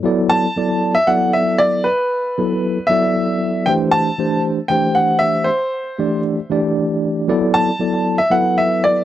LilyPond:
<<
  \new Staff \with { instrumentName = "Grand piano" } { \time 7/8 \key e \minor \tempo 4 = 116 r8 a''4~ a''16 e''16 fis''8 e''8 d''8 | b'2 e''4. | g''8 a''4 r8 g''8 fis''8 e''8 | c''4. r2 |
r8 a''4~ a''16 e''16 fis''8 e''8 d''8 | }
  \new Staff \with { instrumentName = "Tine electric piano" } { \time 7/8 \key e \minor <fis b e' a' d''>4 <fis b e' a' d''>8. r16 <fis b e' a' d''>4. | r4 <fis b e' a' b'>8. r16 <fis b e' a' d''>4. | <e a d' g' c''>4 <e a d' g' c''>8. r16 <e a d' g' c''>4. | r4 <e a d' g' d''>8. r16 <e a d' g' d''>4. |
<fis b e' a' d''>4 <fis b e' a' d''>8. r16 <fis b e' a' b'>4. | }
>>